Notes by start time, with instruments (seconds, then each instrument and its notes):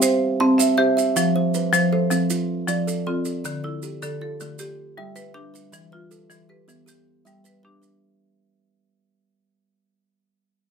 Already playing: marimba C4 G5, kalimba G4 E5
0.02 kalimba C5, marimba C5, maracas
0.40 kalimba C4 A5, marimba C4
0.58 marimba E5, kalimba E5, maracas
0.77 marimba G4 C5, kalimba E5
0.97 kalimba E5, maracas
1.16 kalimba F3, marimba F3, maracas
1.36 kalimba C5
1.54 kalimba B4, maracas
1.72 marimba F3 C5, kalimba F3, maracas
1.92 kalimba A4, marimba C5
2.10 marimba F3, kalimba C4, maracas
2.30 kalimba F4, maracas
2.68 marimba F3, kalimba F3 D5, maracas
2.87 kalimba A4, maracas
3.07 marimba C4 F4, kalimba A4
3.25 kalimba A4, maracas
3.44 kalimba D3, marimba D3, maracas
3.64 marimba E4, kalimba A4
3.82 kalimba G4, maracas
4.02 kalimba D3, marimba D3 A4, maracas
4.21 kalimba F4, marimba A4
4.40 marimba D3, kalimba A3, maracas
4.59 marimba G4, kalimba G4, maracas
4.97 marimba G3, kalimba G3 E5
5.16 kalimba B4, marimba B4, maracas
5.34 marimba D4 G4, kalimba B4
5.54 kalimba B4, maracas
5.72 kalimba E3, marimba E3, maracas
5.92 marimba F4, kalimba B4
6.11 kalimba A4, maracas
6.30 marimba E3, kalimba E3, maracas
6.49 kalimba G4, marimba B4
6.68 marimba E3, kalimba B3, maracas
6.86 kalimba G4, marimba G4, maracas
7.25 kalimba G3 E5, marimba G3, maracas
7.44 kalimba B4, marimba B4, maracas
7.63 marimba D4 G4, kalimba B4
7.82 kalimba B4, maracas